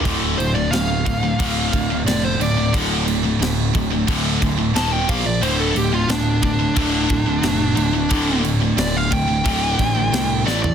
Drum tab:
CC |x-x-x-x-x-x-x-x-|x-x-x-x-x-x-x-x-|x-x-x-x-x-x-x-x-|x-x-x-x-x-x-x---|
SD |----o-------o---|----o-------o---|----o-------o---|----o-------o-o-|
FT |----------------|----------------|----------------|---------------o|
BD |o-----o-o-o-----|o-----o-o-o---o-|------o-o-o-----|o-----o-o-o-----|